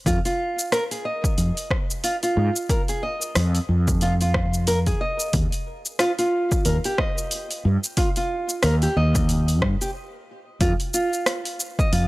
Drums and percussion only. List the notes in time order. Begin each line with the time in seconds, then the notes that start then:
0.06 kick, open hi-hat, shaker
0.25 open hi-hat, shaker
0.59 shaker
0.72 cross-stick, open hi-hat, shaker
0.91 open hi-hat, shaker
1.24 kick, shaker
1.38 open hi-hat, shaker
1.57 open hi-hat, shaker
1.71 kick, cross-stick
1.90 shaker
2.04 open hi-hat, shaker
2.23 open hi-hat, shaker
2.56 shaker
2.69 kick, open hi-hat, shaker
2.88 open hi-hat, shaker
3.22 shaker
3.35 cross-stick, open hi-hat, shaker
3.55 open hi-hat, shaker
3.88 kick, shaker
4.01 open hi-hat, shaker
4.21 open hi-hat, shaker
4.34 kick, cross-stick
4.54 shaker
4.67 open hi-hat, shaker
4.86 kick, open hi-hat, shaker
5.20 shaker
5.33 kick, open hi-hat, shaker
5.52 open hi-hat, shaker
5.86 shaker
5.99 cross-stick, open hi-hat, shaker
6.19 open hi-hat, shaker
6.52 kick, shaker
6.65 open hi-hat, shaker
6.84 open hi-hat, shaker
6.98 kick, cross-stick
7.18 shaker
7.31 open hi-hat, shaker
7.51 open hi-hat, shaker
7.84 shaker
7.97 kick, open hi-hat, shaker
8.16 open hi-hat, shaker
8.49 shaker
8.63 cross-stick, open hi-hat, shaker
8.82 open hi-hat, shaker
9.15 kick, open hi-hat, shaker
9.29 open hi-hat, shaker
9.48 open hi-hat, shaker
9.62 kick, cross-stick
9.81 open hi-hat, shaker
10.61 kick, open hi-hat, shaker
10.80 open hi-hat, shaker
10.94 shaker
11.13 shaker
11.26 cross-stick, open hi-hat, shaker
11.45 open hi-hat, shaker
11.60 shaker
11.79 kick, shaker
11.93 open hi-hat, shaker